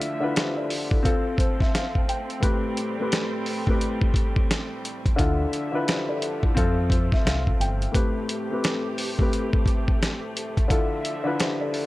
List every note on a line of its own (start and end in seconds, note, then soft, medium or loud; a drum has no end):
0.00 0.20 D3 loud
0.00 1.03 D3 medium
0.00 1.03 F3 medium
0.00 1.01 A3 medium
0.00 0.21 D4 medium
0.00 0.22 E4 medium
0.00 0.23 F4 medium
0.00 0.58 A4 loud
0.00 1.03 E5 medium
0.00 closed hi-hat medium
0.20 0.68 D3 medium
0.20 0.69 D4 medium
0.20 0.35 E4 medium
0.20 0.36 F4 medium
0.20 0.36 B4 loud
0.36 0.56 G4 medium
0.36 0.56 C5 medium
0.36 snare loud
0.36 closed hi-hat medium
0.57 0.90 A4 medium
0.57 0.90 D5 medium
0.70 open hi-hat medium
0.91 1.25 E4 medium
0.91 1.04 A4 medium
0.91 kick medium
1.03 2.41 F3 medium
1.03 2.41 A3 medium
1.03 2.16 C4 medium
1.03 5.15 C4 medium
1.03 2.17 F4 medium
1.03 2.17 A4 loud
1.03 kick medium
1.03 closed hi-hat medium
1.38 1.58 C5 medium
1.38 kick loud
1.38 closed hi-hat medium
1.60 1.73 E5 medium
1.60 kick loud
1.60 snare soft
1.74 2.06 F5 medium
1.74 snare loud
1.74 closed hi-hat medium
1.95 kick medium
2.09 2.41 G5 medium
2.09 closed hi-hat medium
2.30 closed hi-hat soft
2.40 2.80 A2 medium
2.40 5.15 G3 medium
2.40 2.81 A3 medium
2.40 5.16 A3 medium
2.40 2.81 C4 medium
2.40 2.82 G4 medium
2.40 2.82 B4 medium
2.40 kick loud
2.40 closed hi-hat medium
2.77 closed hi-hat medium
2.99 3.46 A2 medium
2.99 3.46 A3 medium
2.99 3.46 C4 medium
2.99 3.47 G4 medium
2.99 3.47 B4 medium
3.12 snare loud
3.12 closed hi-hat medium
3.46 open hi-hat medium
3.67 4.68 A2 medium
3.67 4.69 A3 medium
3.67 4.69 C4 medium
3.67 4.70 G4 medium
3.67 4.70 B4 medium
3.67 kick medium
3.81 closed hi-hat medium
4.01 kick medium
4.14 kick loud
4.14 closed hi-hat medium
4.36 kick medium
4.51 snare loud
4.51 closed hi-hat medium
4.85 closed hi-hat medium
5.06 kick medium
5.06 closed hi-hat soft
5.16 5.44 D2 loud
5.16 5.56 D3 loud
5.16 6.55 D3 medium
5.16 7.91 F3 medium
5.16 7.91 A3 medium
5.16 5.57 D4 medium
5.16 5.57 E4 medium
5.16 5.58 F4 medium
5.16 5.58 A4 loud
5.16 6.55 E5 medium
5.16 kick loud
5.16 closed hi-hat medium
5.53 closed hi-hat medium
5.72 6.20 D3 medium
5.72 6.21 D4 medium
5.72 5.87 E4 medium
5.72 5.87 F4 medium
5.72 5.88 B4 loud
5.88 6.08 G4 medium
5.88 6.08 C5 medium
5.88 snare loud
5.88 closed hi-hat medium
6.09 6.42 A4 medium
6.09 6.42 D5 medium
6.22 closed hi-hat medium
6.43 6.77 E4 medium
6.43 6.56 A4 medium
6.43 kick medium
6.55 7.09 F2 loud
6.55 7.68 C4 medium
6.55 7.92 C4 medium
6.55 7.68 F4 medium
6.55 7.69 A4 loud
6.55 kick loud
6.55 closed hi-hat medium
6.90 7.10 C5 medium
6.90 kick loud
6.90 closed hi-hat medium
7.12 7.25 E5 medium
7.12 kick loud
7.12 snare soft
7.25 7.51 C2 medium
7.25 7.58 F5 medium
7.25 snare loud
7.25 closed hi-hat medium
7.47 kick medium
7.60 7.86 G1 medium
7.60 7.92 G5 medium
7.60 closed hi-hat medium
7.82 closed hi-hat soft
7.92 8.32 A2 medium
7.92 8.32 A3 medium
7.92 11.86 A3 medium
7.92 8.33 C4 medium
7.92 10.67 C4 medium
7.92 10.67 G4 medium
7.92 8.33 G4 medium
7.92 8.34 B4 medium
7.92 kick loud
7.92 closed hi-hat medium
8.29 closed hi-hat medium
8.50 8.97 A2 medium
8.50 8.98 A3 medium
8.50 8.98 C4 medium
8.50 8.98 G4 medium
8.50 8.99 B4 medium
8.64 snare loud
8.64 closed hi-hat medium
8.98 open hi-hat medium
9.18 10.20 A2 medium
9.18 10.21 A3 medium
9.18 10.21 C4 medium
9.18 10.21 G4 medium
9.18 10.22 B4 medium
9.18 kick medium
9.33 closed hi-hat medium
9.53 kick medium
9.66 kick loud
9.66 closed hi-hat medium
9.88 kick medium
10.03 snare loud
10.03 closed hi-hat medium
10.37 closed hi-hat medium
10.57 kick medium
10.57 closed hi-hat soft
10.68 11.08 D3 medium
10.68 11.86 D3 medium
10.68 11.86 F3 medium
10.68 11.09 D4 medium
10.68 11.09 E4 medium
10.68 11.09 F4 medium
10.68 11.10 A4 loud
10.68 11.86 E5 medium
10.68 kick loud
10.68 closed hi-hat medium
11.05 closed hi-hat medium
11.24 11.72 D3 medium
11.24 11.72 D4 medium
11.24 11.39 E4 medium
11.24 11.39 F4 medium
11.24 11.40 B4 loud
11.39 11.60 G4 medium
11.39 11.60 C5 medium
11.39 snare loud
11.39 closed hi-hat medium
11.61 11.86 A4 medium
11.61 11.86 D5 medium
11.74 open hi-hat medium